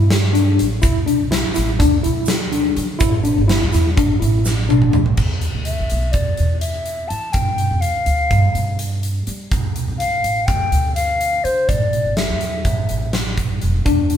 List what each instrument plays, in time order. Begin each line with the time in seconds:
Already playing: upright bass G2, tine electric piano E4
0.10 snare, closed hi-hat
0.33 tine electric piano D4, closed hi-hat
0.59 upright bass A1, closed hi-hat
0.82 upright bass D2, tine electric piano E4, kick, closed hi-hat, shaker
1.06 tine electric piano D4, closed hi-hat
1.21 upright bass C2
1.31 tine electric piano E4, snare, closed hi-hat
1.45 upright bass A1
1.54 upright bass A1, tine electric piano E4, snare, closed hi-hat, shaker
1.79 upright bass D2, tine electric piano D4, kick, snare, closed hi-hat
2.03 upright bass D2, tine electric piano E4, closed hi-hat
2.26 snare, closed hi-hat, shaker
2.52 tine electric piano D4, closed hi-hat
2.76 upright bass D3, closed hi-hat, shaker
2.99 upright bass A1, tine electric piano E4, kick, closed hi-hat, shaker
3.23 tine electric piano D4, closed hi-hat, shaker
3.38 upright bass G1
3.48 tine electric piano E4, snare, closed hi-hat
3.63 upright bass E2
3.72 upright bass E2, tine electric piano E4, snare, closed hi-hat, shaker
3.97 upright bass A1, tine electric piano D4, kick, closed hi-hat
4.20 upright bass A1, tine electric piano E4, closed hi-hat
4.45 snare, shaker
4.69 tine electric piano D4, high tom, shaker
4.82 mid tom
4.93 upright bass A2, mid tom, shaker
5.06 floor tom
5.17 upright bass E2, kick, crash
5.41 closed hi-hat
5.55 upright bass D2
5.65 flute E5, closed hi-hat
5.79 upright bass B1
5.90 upright bass B1, closed hi-hat
6.12 upright bass E2, flute D5, kick, closed hi-hat
6.37 upright bass E2, closed hi-hat
6.61 flute E5, closed hi-hat
6.86 closed hi-hat
7.08 upright bass E3, flute A5, closed hi-hat
7.33 upright bass G2, flute G5, kick, closed hi-hat
7.58 closed hi-hat
7.71 upright bass F2
7.81 flute F5, closed hi-hat
7.94 upright bass D2
8.06 upright bass D2, closed hi-hat
8.31 upright bass G2, kick, closed hi-hat
8.55 upright bass G2, closed hi-hat
8.79 closed hi-hat
9.03 closed hi-hat
9.27 upright bass G3, closed hi-hat
9.51 upright bass D2, kick, closed hi-hat
9.76 closed hi-hat
9.88 upright bass C2
9.98 flute F5, closed hi-hat
10.13 upright bass A1
10.24 upright bass A1, closed hi-hat
10.46 upright bass D2, flute G5, kick, closed hi-hat
10.72 upright bass D2, closed hi-hat
10.95 flute F5, closed hi-hat
11.21 closed hi-hat
11.44 upright bass D3, flute C5, closed hi-hat
11.68 upright bass A1, flute D5, kick, closed hi-hat
11.93 closed hi-hat
12.05 upright bass G1
12.17 flute E5, snare, closed hi-hat
12.29 upright bass E2
12.41 upright bass E2, closed hi-hat
12.65 upright bass A1, kick, closed hi-hat
12.89 upright bass A1, closed hi-hat
13.13 snare, closed hi-hat
13.38 kick, closed hi-hat
13.62 upright bass F1, closed hi-hat
13.86 upright bass E1, tine electric piano D4, kick, closed hi-hat
14.10 closed hi-hat